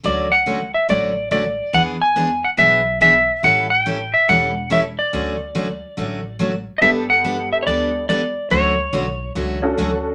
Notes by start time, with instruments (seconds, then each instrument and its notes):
0.03 upright bass D2, steel-string acoustic guitar D3 F#3 A3 C#4 F#4, electric slide guitar D5
0.32 electric slide guitar F#5
0.46 steel-string acoustic guitar D3 F#3 A3 C#4 F#4
0.74 electric slide guitar E5
0.88 upright bass A1, steel-string acoustic guitar D3 F#3 A3 C#4 F#4, electric slide guitar D5
1.31 steel-string acoustic guitar D3 F#3 A3 C#4 F#4, electric slide guitar D5
1.73 upright bass E2, steel-string acoustic guitar E3 B3 D4 G#4, electric slide guitar F#5
2.02 electric slide guitar G#5
2.16 steel-string acoustic guitar E3 B3 D4 G#4
2.44 electric slide guitar F#5
2.57 upright bass B1, steel-string acoustic guitar E3 B3 D4 G#4, electric slide guitar E5
3.01 steel-string acoustic guitar E3 B3 D4 G#4, electric slide guitar E5
3.43 upright bass A1, steel-string acoustic guitar E3 G3 C#4 E4 A4, electric slide guitar F#5
3.70 electric slide guitar F#5
3.81 electric slide guitar G5
3.86 steel-string acoustic guitar E3 G3 C#4 E4 A4
4.14 electric slide guitar E5
4.28 upright bass E1, steel-string acoustic guitar E3 G3 C#4 E4 A4, electric slide guitar F#5
4.70 steel-string acoustic guitar E3 G3 C#4 E4 A4, electric slide guitar E5
4.99 electric slide guitar D5
5.13 upright bass D2, steel-string acoustic guitar D3 F#3 A3 C#4 F#4
5.55 steel-string acoustic guitar D3 F#3 A3 C#4 F#4
5.97 upright bass A1, steel-string acoustic guitar D3 F#3 A3 C#4 F#4
6.39 steel-string acoustic guitar D3 F#3 A3 C#4 F#4
6.78 upright bass G1, steel-string acoustic guitar G3 B3 D4 A4, honky-tonk piano B3 D4 G4, electric slide guitar D#5 E5
6.82 honky-tonk piano A4
7.10 electric slide guitar F#5
7.24 steel-string acoustic guitar G3 B3 D4 A4
7.53 electric slide guitar E5
7.63 upright bass D2, electric slide guitar C#5
7.67 steel-string acoustic guitar G3 B3 D4 A4, electric slide guitar D5
8.09 steel-string acoustic guitar G3 B3 D4 A4, electric slide guitar D5
8.50 upright bass D2, steel-string acoustic guitar D3 F#3 A3 C#4 F#4, electric slide guitar C#5
8.93 upright bass B1, steel-string acoustic guitar D3 F#3 A3 C#4 F#4
9.35 upright bass C#2, steel-string acoustic guitar D3 F#3 A3 C#4 F#4
9.62 honky-tonk piano C#4 D4 F#4 A4
9.78 upright bass D2, steel-string acoustic guitar D3 F#3 A3 C#4 F#4